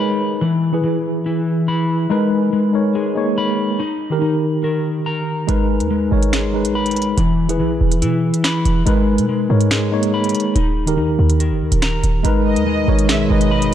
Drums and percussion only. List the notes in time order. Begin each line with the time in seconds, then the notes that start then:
5.49 closed hi-hat
5.80 closed hi-hat
6.23 closed hi-hat
6.33 finger snap, snare, closed hi-hat
6.65 closed hi-hat
6.86 closed hi-hat
6.91 closed hi-hat
6.96 closed hi-hat
7.02 closed hi-hat
7.18 closed hi-hat
7.49 closed hi-hat
7.92 closed hi-hat
8.02 closed hi-hat
8.34 closed hi-hat
8.44 finger snap, snare, closed hi-hat
8.65 closed hi-hat
8.87 closed hi-hat
9.18 closed hi-hat
9.61 closed hi-hat
9.71 finger snap, snare, closed hi-hat
10.03 closed hi-hat
10.24 closed hi-hat
10.29 closed hi-hat
10.35 closed hi-hat
10.40 closed hi-hat
10.56 closed hi-hat
10.87 closed hi-hat
11.30 closed hi-hat
11.40 closed hi-hat
11.72 closed hi-hat
11.82 finger snap, snare, closed hi-hat
12.04 closed hi-hat
12.25 closed hi-hat
12.56 closed hi-hat
12.99 closed hi-hat
13.09 finger snap, snare, closed hi-hat
13.41 closed hi-hat
13.62 closed hi-hat